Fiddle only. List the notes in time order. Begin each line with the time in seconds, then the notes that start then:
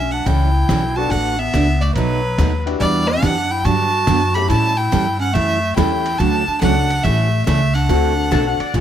Already playing: E5
0.11 F#5
0.26 G5
0.96 A5
1.10 F#5
1.39 E5
1.81 D5
1.95 B4
2.80 D5
3.07 F#5
3.51 G5
3.65 A5
4.35 B5
4.50 A5
4.77 G5
5.21 F#5
5.34 E5
5.76 G5
6.18 A5
6.61 F#5
7.03 E5
7.46 E5
7.74 F#5